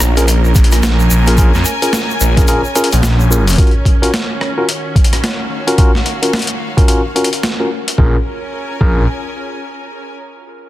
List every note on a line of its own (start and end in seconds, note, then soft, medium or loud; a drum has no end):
0.00 0.54 A#1 medium
0.00 7.97 C#4 medium
0.00 4.39 A#4 medium
0.00 cross-stick medium
0.00 shaker medium
0.17 0.25 C#4 medium
0.17 0.25 F4 medium
0.17 0.25 G#4 medium
0.17 0.25 A#4 medium
0.17 closed hi-hat medium
0.17 shaker soft
0.28 closed hi-hat medium
0.28 shaker soft
0.45 4.35 G#5 medium
0.45 shaker soft
0.55 1.09 A#1 loud
0.55 kick loud
0.55 closed hi-hat medium
0.55 shaker medium
0.64 closed hi-hat medium
0.71 cross-stick soft
0.71 closed hi-hat medium
0.71 shaker soft
0.83 snare loud
0.83 closed hi-hat medium
0.83 shaker medium
1.00 shaker soft
1.11 1.52 A#1 loud
1.11 shaker medium
1.26 1.35 C#4 medium
1.26 1.35 F4 medium
1.26 1.35 G#4 medium
1.26 1.35 A#4 loud
1.26 closed hi-hat medium
1.26 shaker soft
1.38 1.51 C#4 medium
1.38 1.50 F4 medium
1.38 1.51 G#4 medium
1.38 1.50 A#4 loud
1.38 kick loud
1.38 closed hi-hat medium
1.38 shaker medium
1.54 1.64 F2 medium
1.54 snare soft
1.54 shaker soft
1.65 closed hi-hat soft
1.65 shaker loud
1.82 1.96 C#4 medium
1.82 1.96 F4 medium
1.82 1.96 G#4 medium
1.82 1.96 A#4 medium
1.82 closed hi-hat medium
1.82 shaker soft
1.93 snare loud
1.93 closed hi-hat medium
1.93 shaker medium
2.10 shaker soft
2.20 2.62 A#1 loud
2.20 shaker medium
2.37 2.45 C#4 medium
2.37 2.45 F4 medium
2.37 2.45 G#4 medium
2.37 2.45 A#4 loud
2.37 kick loud
2.37 closed hi-hat medium
2.37 shaker soft
2.47 2.61 C#4 medium
2.47 2.61 F4 medium
2.47 2.61 G#4 medium
2.47 2.61 A#4 medium
2.47 closed hi-hat medium
2.47 shaker medium
2.65 shaker soft
2.75 2.88 C#4 medium
2.75 2.88 F4 medium
2.75 2.88 G#4 medium
2.75 2.88 A#4 loud
2.75 closed hi-hat soft
2.75 shaker medium
2.84 closed hi-hat medium
2.92 3.56 A#1 medium
2.92 closed hi-hat medium
2.92 shaker soft
3.03 snare loud
3.03 closed hi-hat medium
3.03 shaker soft
3.20 shaker soft
3.30 3.43 C#4 medium
3.30 3.43 F4 medium
3.30 3.43 G#4 medium
3.30 3.43 A#4 medium
3.30 shaker loud
3.47 closed hi-hat medium
3.47 shaker soft
3.50 closed hi-hat soft
3.53 closed hi-hat soft
3.56 3.71 C#4 medium
3.56 3.71 F4 medium
3.56 3.71 F#4 medium
3.56 3.71 A#4 medium
3.56 kick loud
3.56 closed hi-hat soft
3.58 closed hi-hat medium
3.63 closed hi-hat soft
3.67 closed hi-hat soft
3.71 closed hi-hat soft
3.85 kick medium
3.85 closed hi-hat soft
4.02 4.10 C#4 medium
4.02 4.10 F4 medium
4.02 4.10 F#4 medium
4.02 4.10 A#4 medium
4.02 closed hi-hat medium
4.14 snare loud
4.14 closed hi-hat medium
4.41 cross-stick medium
4.58 4.66 C#4 medium
4.58 4.66 F4 medium
4.58 4.66 F#4 medium
4.58 7.99 F#4 medium
4.58 4.66 A#4 medium
4.69 closed hi-hat medium
4.96 kick loud
4.96 closed hi-hat soft
5.04 7.98 F5 medium
5.04 closed hi-hat medium
5.13 cross-stick soft
5.13 closed hi-hat medium
5.24 snare loud
5.24 closed hi-hat medium
5.67 5.75 C#4 medium
5.67 5.75 F4 medium
5.67 5.75 F#4 medium
5.67 5.75 A#4 loud
5.67 closed hi-hat medium
5.78 5.91 C#4 medium
5.78 5.91 F4 medium
5.78 5.91 F#4 medium
5.78 5.91 A#4 loud
5.78 kick loud
5.78 closed hi-hat medium
5.95 snare soft
6.06 closed hi-hat soft
6.22 6.36 C#4 medium
6.22 6.36 F4 medium
6.22 6.36 F#4 medium
6.22 6.36 A#4 medium
6.22 closed hi-hat medium
6.33 snare loud
6.33 closed hi-hat soft
6.36 closed hi-hat soft
6.39 closed hi-hat soft
6.42 closed hi-hat soft
6.42 closed hi-hat medium
6.47 closed hi-hat medium
6.77 6.85 C#4 medium
6.77 6.85 F4 medium
6.77 6.85 F#4 medium
6.77 6.85 A#4 medium
6.77 kick loud
6.77 closed hi-hat medium
6.88 7.01 C#4 medium
6.88 7.01 F4 medium
6.88 7.01 F#4 medium
6.88 7.01 A#4 medium
6.88 closed hi-hat medium
7.16 7.28 C#4 medium
7.16 7.28 F4 medium
7.16 7.28 F#4 medium
7.16 7.28 A#4 medium
7.16 closed hi-hat soft
7.24 closed hi-hat medium
7.33 closed hi-hat soft
7.43 snare loud
7.43 closed hi-hat medium
7.60 7.68 C#4 medium
7.60 7.68 F4 medium
7.60 7.68 F#4 medium
7.60 7.68 A#4 medium
7.88 closed hi-hat medium
7.98 8.16 A#1 loud
7.98 8.16 C#4 medium
7.98 8.16 F4 medium
7.98 8.16 G#4 medium
7.98 8.16 A#4 medium
7.98 kick loud
8.08 10.14 A#4 medium
8.18 10.15 G#5 medium
8.81 9.06 A#1 loud
8.81 9.03 C#4 medium
8.81 9.03 F4 medium
8.81 9.03 G#4 medium
8.81 9.03 A#4 loud
8.81 kick loud